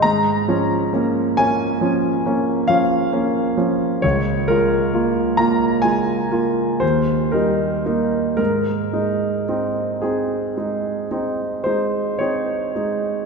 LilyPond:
\new Staff \with { instrumentName = "Grand piano" } { \time 9/8 \key aes \major \tempo 4. = 42 << { bes''4. aes''4. f''4. | des''8 bes'4 bes''8 aes''4 c''8 bes'4 | bes'4. aes'4. c''8 des''4 | } \\ { aes,8 <f des'>8 <bes des'>8 <bes des'>8 <f des'>8 <bes des'>8 <f des'>8 <bes des'>8 <f des'>8 | des,8 <aes f'>8 <bes f'>8 <bes f'>8 <aes f'>8 <bes f'>8 ees,8 <g ees'>8 <bes ees'>8 | aes,8 <aes ees'>8 <c' ees'>8 <c' ees'>8 <aes ees'>8 <c' ees'>8 <aes ees'>8 <c' ees'>8 <aes ees'>8 | } >> }